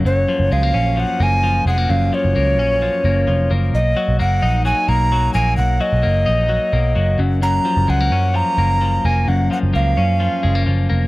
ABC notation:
X:1
M:4/4
L:1/16
Q:1/4=130
K:F#
V:1 name="Recorder"
c4 e4 f2 g4 f2 | e2 c12 z2 | d4 f4 g2 a4 g2 | f2 d12 z2 |
a4 f4 a6 g2 | f2 f2 e8 z4 |]
V:2 name="Clean electric guitar" clef=bass
F,,2 E,2 G, A, C2 E,2 A,2 E,2 G, A, | F,,2 E,2 A,2 C2 E,2 A,2 E,2 A,2 | z2 F,2 A,2 D2 F,2 A,2 F,2 A,2- | A,2 F,2 A,2 D2 F,2 A,2 F,2 F,,2 |
F,,2 E,2 G, A, C2 E,2 A,2 E,2 A,2 | F,,2 E,2 A,2 C2 E,2 G, A, E,2 A,2 |]
V:3 name="Picked electric bass" clef=bass
F,,,2 z F,,, C,,2 A,,,3 z F,,,4 E,,,2 | F,,,2 z F,,, C,,2 A,,,3 z F,,,2 E,,,2 F,,,2 | B,,,2 z B,,, F,,,2 A,,,3 z B,,,4 A,,,2 | B,,,2 z B,,, F,,,2 A,,,3 z B,,,2 F,,,2 F,,,2- |
F,,,2 z F,,, C,,2 F,,3 z F,,,4 E,,,2 | F,,,2 z F,,, C,,2 F,,3 z F,,,2 F,,,2 E,,,2 |]